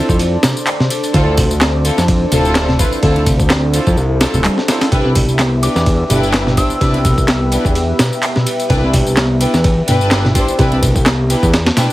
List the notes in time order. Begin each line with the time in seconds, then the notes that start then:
Already playing: C4 D4 A4 C5 D5
0.09 F2, kick, tambourine
0.19 ride, tambourine
0.43 C3, snare, ride, tambourine
0.57 tambourine
0.67 clap, ride, tambourine
0.80 C3, snare
0.90 ride, tambourine
1.03 ride, tambourine
1.14 D2 D3 C4 E4 F4 A4, kick, ride, tambourine
1.27 D4
1.37 C3, kick, open hi-hat, ride, tambourine
1.51 tambourine
1.61 C4, snare, clap, ride, tambourine
1.85 C4 E4 F4 A4, ride, tambourine
1.98 F2, snare, tambourine
2.08 kick, ride, tambourine
2.32 D1 C3 C4 E4 F4 A4, ride, tambourine
2.45 tambourine
2.55 snare, clap, ride, tambourine
2.69 C3, snare
2.79 C4 E4 F4 B4, kick, ride, tambourine
2.92 tambourine
3.03 D2 D3 C4 E4 F4 A4, kick, ride, tambourine
3.16 D4, ride
3.26 C3, kick, ride, tambourine
3.40 kick, tambourine
3.50 C4, snare, clap, ride, tambourine
3.74 C4 E4 F4 A4, ride, tambourine
3.87 F2, kick, tambourine
3.97 C2, tambourine
4.21 C4 D4 E4 F4 A4, snare, ride, tambourine
4.34 D1 C3, tambourine
4.44 G3, clap, ride, tambourine
4.58 D4, snare
4.68 C4 E4 F4 A4, snare, ride, tambourine
4.81 snare, ride, tambourine
4.91 C2 C3 B3 D4 E4 G4 B4 E5, kick, ride, tambourine
5.05 C4
5.15 B2, kick, open hi-hat, ride, tambourine
5.29 tambourine
5.39 B3, snare, clap, ride, tambourine
5.63 D4 E4 G4 B4 D6, ride, tambourine
5.76 E2, snare, tambourine
5.86 kick, ride, tambourine
6.10 G1 B2 D4 E4 G4 B4, ride, tambourine
6.23 tambourine
6.34 snare, clap, ride, tambourine
6.47 B2, snare
6.57 D4 E4 G4 C5 E6, kick, ride, tambourine
6.70 tambourine
6.81 C2 C3 D4 E4 G4 B4, kick, ride, tambourine
6.94 C4, ride
7.05 B2, kick, ride, tambourine
7.18 kick, tambourine
7.28 B3, snare, clap, ride, tambourine
7.52 D4 E4 G4 B4, ride, tambourine
7.65 E2, kick, tambourine
7.75 ride, tambourine
7.99 B2, snare, ride, tambourine
8.13 tambourine
8.23 clap, ride, tambourine
8.36 B2, snare
8.46 ride, tambourine
8.60 ride, tambourine
8.70 C2 C3 D4 E4 G4 B4, kick, ride, tambourine
8.84 C4
8.94 B2, kick, open hi-hat, ride, tambourine
9.07 tambourine
9.17 B3, snare, clap, ride, tambourine
9.41 D4 E4 G4 B4, ride, tambourine
9.54 E2, snare, tambourine
9.64 kick, ride, tambourine
9.88 G1 B2 D4 E4 G4 B4, ride, tambourine
10.01 tambourine
10.11 snare, clap, ride, tambourine
10.25 B2, snare
10.35 D4 E4 G4 C5, kick, ride, tambourine
10.48 tambourine
10.59 C2 C3 D4 E4 G4 B4, kick, ride, tambourine
10.72 C4, ride
10.83 B2, kick, ride, tambourine
10.96 kick, tambourine
11.06 B3, snare, clap, ride, tambourine
11.30 D4 E4 G4 B4, ride, tambourine
11.43 E2, kick, tambourine
11.54 snare, ride, tambourine
11.66 snare, ride
11.77 B2 D4 E4 G4 B4, snare, ride, tambourine